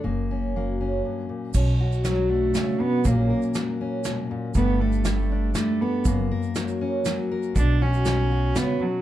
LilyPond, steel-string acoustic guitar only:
\new Staff \with { instrumentName = "Steel-string acoustic guitar" } { \time 3/4 \key b \minor \tempo 4 = 120 << { ais8 cis'8 ais8 cis'4. | cis'8 fis'4 d'4. | <fis ais cis' ais'>8 ais'4 cis'4. | <g a d' a'>8 a'4 d'4 a'8 |
ais8 ais'4 cis'4 ais'8 | b8 fis'4 fis'4. | } \\ { fis,4 fis4 g,8 ais,8 | b,4 fis4 cis8 b,8 | ais,4 fis4 b,8 ais,8 | g,4 g4 g4 |
fis,4 fis4 fis4 | b,4 fis4 cis8 b,8 | } >> }